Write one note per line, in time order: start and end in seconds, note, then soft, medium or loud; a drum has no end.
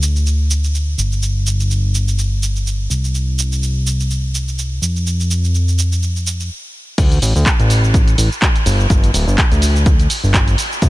0.00 0.96 D2 medium
0.00 shaker medium
0.16 shaker soft
0.27 shaker soft
0.51 shaker medium
0.64 shaker soft
0.75 shaker soft
0.98 2.88 G1 medium
0.98 shaker medium
1.12 shaker soft
1.23 shaker soft
1.47 shaker medium
1.60 shaker soft
1.71 shaker soft
1.95 shaker medium
2.08 shaker soft
2.19 shaker soft
2.43 shaker medium
2.56 shaker soft
2.67 shaker soft
2.90 4.80 C2 medium
2.90 shaker medium
3.04 shaker soft
3.15 shaker soft
3.39 shaker medium
3.52 shaker soft
3.63 shaker soft
3.87 shaker medium
4.00 shaker soft
4.11 shaker soft
4.35 shaker medium
4.48 shaker soft
4.59 shaker soft
4.82 6.50 F2 medium
4.82 shaker medium
4.96 shaker soft
5.07 shaker soft
5.20 shaker soft
5.31 shaker medium
5.44 shaker soft
5.55 shaker soft
5.68 shaker soft
5.79 shaker medium
5.92 shaker soft
6.03 shaker soft
6.16 shaker soft
6.27 shaker medium
6.40 shaker soft
6.98 7.19 D2 loud
6.98 kick loud
6.98 closed hi-hat medium
6.98 crash loud
6.98 shaker soft
7.12 closed hi-hat medium
7.12 shaker soft
7.22 7.34 A1 medium
7.22 open hi-hat loud
7.22 shaker medium
7.36 7.44 D2 medium
7.36 shaker soft
7.46 kick loud
7.46 clap loud
7.46 closed hi-hat medium
7.46 shaker soft
7.60 8.16 A1 medium
7.60 closed hi-hat medium
7.60 shaker soft
7.70 open hi-hat loud
7.70 shaker medium
7.84 shaker soft
7.94 kick loud
7.94 closed hi-hat medium
7.94 shaker soft
8.08 closed hi-hat medium
8.08 shaker soft
8.18 8.29 A1 medium
8.18 open hi-hat loud
8.18 shaker medium
8.32 shaker soft
8.42 kick loud
8.42 clap loud
8.42 closed hi-hat medium
8.42 shaker soft
8.56 closed hi-hat medium
8.56 shaker soft
8.66 8.87 G1 medium
8.66 open hi-hat loud
8.66 shaker medium
8.80 shaker soft
8.90 9.11 G1 loud
8.90 kick loud
8.90 closed hi-hat medium
8.90 shaker soft
9.04 closed hi-hat medium
9.04 shaker soft
9.14 9.26 D1 medium
9.14 open hi-hat loud
9.14 shaker medium
9.28 9.36 G1 medium
9.28 shaker soft
9.38 kick loud
9.38 clap loud
9.38 closed hi-hat medium
9.38 shaker soft
9.52 10.08 D2 medium
9.52 closed hi-hat medium
9.52 shaker soft
9.62 open hi-hat loud
9.62 shaker medium
9.76 shaker soft
9.86 kick loud
9.86 closed hi-hat medium
9.86 shaker soft
10.00 closed hi-hat medium
10.00 shaker soft
10.10 open hi-hat loud
10.10 shaker medium
10.24 10.55 G1 medium
10.24 shaker soft
10.34 kick loud
10.34 clap loud
10.34 closed hi-hat medium
10.34 shaker soft
10.48 closed hi-hat medium
10.48 shaker soft
10.58 open hi-hat loud
10.58 shaker medium
10.72 shaker soft
10.82 10.89 C2 loud
10.82 kick loud
10.82 closed hi-hat medium
10.82 shaker soft